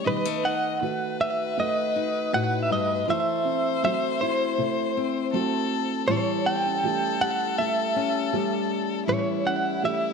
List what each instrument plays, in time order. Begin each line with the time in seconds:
Already playing: felt piano A3 C#4 G4
0.05 steel-string acoustic guitar B2 G3, felt piano D#3, clean electric guitar B4, violin D#5
0.25 steel-string acoustic guitar A3
0.43 felt piano D#4, clean electric guitar F#5
0.81 steel-string acoustic guitar D#3, felt piano A3 F#4, violin B4
1.21 steel-string acoustic guitar F#4, clean electric guitar E5
1.57 steel-string acoustic guitar F#2, felt piano A3, clean electric guitar D#5
1.96 steel-string acoustic guitar D#4
2.33 steel-string acoustic guitar A2, felt piano A3 D#4 F#4, clean electric guitar F#5
2.63 clean electric guitar E5
2.71 steel-string acoustic guitar G2, clean electric guitar D#5
3.07 steel-string acoustic guitar F#2 A3, felt piano E3, violin C5, clean electric guitar E5
3.45 felt piano C4
3.83 steel-string acoustic guitar F#3, felt piano A3 C4 F#4, clean electric guitar E5
4.21 steel-string acoustic guitar E4, clean electric guitar C5
4.58 steel-string acoustic guitar C3, felt piano A3
4.97 steel-string acoustic guitar C4
5.33 steel-string acoustic guitar F#3 A3, felt piano A3 C4 F#4, violin A4
6.08 steel-string acoustic guitar A2 G3, felt piano E3, violin A4, clean electric guitar C#5
6.46 felt piano B3, clean electric guitar G5
6.65 felt piano C#4
6.83 steel-string acoustic guitar E3, felt piano A3 C#4 G4
7.21 steel-string acoustic guitar G4, clean electric guitar F#5
7.58 steel-string acoustic guitar E2, felt piano A3, clean electric guitar E5
7.96 steel-string acoustic guitar C#4
8.33 steel-string acoustic guitar E3 G3, felt piano A3 C#4 G4
9.06 steel-string acoustic guitar A2 G3, felt piano E3, violin E4, clean electric guitar C#5
9.45 felt piano C#4, clean electric guitar F#5
9.83 steel-string acoustic guitar E3, felt piano A3 C#4 G4, clean electric guitar E5